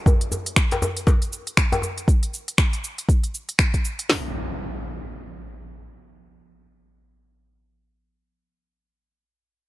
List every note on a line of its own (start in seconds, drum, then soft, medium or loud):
0.06 kick loud
0.06 djembe tone medium
0.06 cabasa medium
0.21 closed hi-hat soft
0.32 djembe tone medium
0.32 cabasa loud
0.46 closed hi-hat medium
0.46 cabasa soft
0.56 finger snap loud
0.56 kick loud
0.56 cabasa medium
0.71 closed hi-hat soft
0.71 djembe slap medium
0.71 cabasa soft
0.82 djembe tone medium
0.82 cabasa medium
0.97 closed hi-hat medium
0.97 cabasa soft
1.07 kick loud
1.07 djembe slap medium
1.07 cabasa medium
1.22 closed hi-hat soft
1.22 cabasa soft
1.33 cabasa medium
1.47 closed hi-hat medium
1.47 cabasa soft
1.57 finger snap loud
1.57 kick loud
1.57 cabasa medium
1.72 closed hi-hat soft
1.72 djembe tone loud
1.72 cabasa soft
1.82 djembe tone medium
1.82 cabasa medium
1.98 closed hi-hat medium
1.98 cabasa soft
2.08 kick loud
2.08 cabasa medium
2.23 closed hi-hat soft
2.23 cabasa soft
2.34 cabasa medium
2.48 closed hi-hat medium
2.48 cabasa soft
2.58 finger snap loud
2.58 kick loud
2.58 cabasa medium
2.73 closed hi-hat soft
2.73 cabasa soft
2.84 cabasa medium
2.98 closed hi-hat medium
2.98 cabasa soft
3.09 kick loud
3.09 cabasa medium
3.24 closed hi-hat soft
3.24 cabasa soft
3.34 cabasa medium
3.49 closed hi-hat medium
3.49 cabasa soft
3.59 finger snap loud
3.59 kick loud
3.59 cabasa medium
3.74 kick medium
3.74 closed hi-hat soft
3.74 cabasa soft
3.85 cabasa medium
3.99 closed hi-hat medium
3.99 cabasa soft
4.09 snare loud
4.09 open hi-hat medium
4.09 impact medium